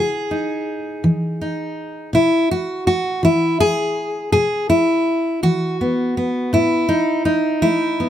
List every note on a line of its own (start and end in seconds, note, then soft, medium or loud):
0.00 0.60 C#3 medium
0.00 2.14 G#4 medium
0.31 1.40 D#4 soft
1.04 1.70 E3 medium
1.41 2.10 D#4 soft
2.13 2.79 B2 medium
2.13 2.51 E4 medium
2.51 2.86 F#4 medium
2.87 3.23 F#4 medium
3.23 3.89 E3 medium
3.23 3.60 E4 medium
3.60 4.31 G#4 medium
4.32 4.99 B2 medium
4.32 4.69 G#4 medium
4.70 5.43 E4 medium
5.43 6.08 E3 medium
5.43 6.52 F#4 medium
5.81 6.16 B3 soft
6.17 6.88 B3 soft
6.53 7.18 A2 medium
6.53 7.61 E4 medium
6.89 7.24 D#4 medium
7.25 8.09 D#4 medium
7.62 8.09 A3 medium
7.62 8.09 E4 medium
8.00 8.09 B3 soft